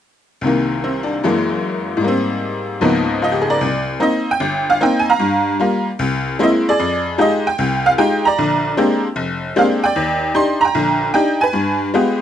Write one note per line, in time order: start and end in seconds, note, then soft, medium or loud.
0.41 1.23 C2 soft
0.41 1.23 C3 soft
0.41 1.24 D#3 soft
0.46 1.24 A#3 soft
0.84 1.15 C4 soft
1.03 1.31 D4 soft
1.24 2.03 F#2 soft
1.24 2.04 E3 soft
1.24 2.04 G#3 soft
1.24 2.02 A#3 soft
1.97 2.80 G#2 soft
1.97 2.82 G3 soft
2.04 2.80 A#3 soft
2.04 2.85 C4 soft
2.81 3.61 C#2 soft
2.81 3.61 G#2 soft
2.81 3.62 F3 soft
2.81 3.62 A#3 soft
2.81 3.62 B3 soft
2.81 3.62 D#4 soft
3.22 3.41 F4 soft
3.22 3.51 D#5 medium
3.32 3.49 G4 soft
3.42 3.54 G#4 soft
3.50 3.65 A#4 soft
3.50 3.87 D5 medium
3.61 3.96 C2 medium
4.00 4.29 A#3 soft
4.00 4.29 C4 soft
4.00 4.29 D#4 soft
4.00 4.30 D#5 medium
4.31 4.71 G5 medium
4.40 4.75 G1 medium
4.70 4.81 F5 medium
4.81 5.09 A#3 medium
4.81 5.09 C4 soft
4.81 5.09 D#4 medium
4.81 5.00 G5 medium
4.99 5.08 G#5 medium
5.10 5.84 F5 medium
5.10 5.84 A#5 medium
5.19 5.54 G2 medium
5.59 5.88 G3 soft
5.59 5.88 A#3 soft
5.59 5.88 F4 medium
5.99 6.34 C2 medium
6.39 6.67 G#3 soft
6.39 6.67 A#3 soft
6.39 6.68 C4 soft
6.39 6.68 E4 medium
6.43 6.49 D#5 medium
6.69 7.43 G#4 medium
6.69 7.04 D5 medium
6.79 7.14 F2 medium
7.18 7.46 G#3 soft
7.18 7.46 D#4 soft
7.18 7.46 F4 soft
7.18 7.47 G4 medium
7.18 7.45 D#5 medium
7.47 7.87 G5 medium
7.58 7.93 C2 medium
7.86 7.91 F5 medium
7.98 8.26 G#3 soft
7.98 8.26 D#4 soft
7.98 8.26 F4 soft
7.98 8.26 G4 medium
7.98 8.25 G5 medium
8.25 9.01 D5 medium
8.25 9.00 A#5 medium
8.38 8.72 A#1 medium
8.38 8.72 D3 medium
8.77 9.05 G#3 soft
8.77 9.05 A#3 soft
8.77 9.05 C4 soft
8.77 9.05 D4 soft
8.77 9.05 G4 medium
9.16 9.51 F1 medium
9.56 9.84 G#3 soft
9.56 9.84 A#3 soft
9.56 9.84 C4 soft
9.56 9.84 D4 soft
9.56 9.84 G4 medium
9.56 9.64 F5 medium
9.84 10.59 D5 medium
9.84 10.37 G5 medium
9.96 10.30 D#2 medium
10.34 10.63 D4 soft
10.34 10.63 D#4 soft
10.34 10.63 G4 medium
10.34 10.63 C6 medium
10.61 11.10 A#5 medium
10.65 11.12 G5 medium
10.75 11.09 A#1 medium
10.75 11.09 D3 medium
11.14 11.42 D4 medium
11.14 11.42 D#4 soft
11.14 11.42 G4 medium
11.14 11.39 G5 medium
11.41 12.17 B4 soft
11.41 11.78 G#5 medium
11.53 11.88 G2 medium
11.94 12.21 G#3 medium
11.94 12.22 B3 soft
11.94 12.22 F4 soft
11.94 12.22 G4 medium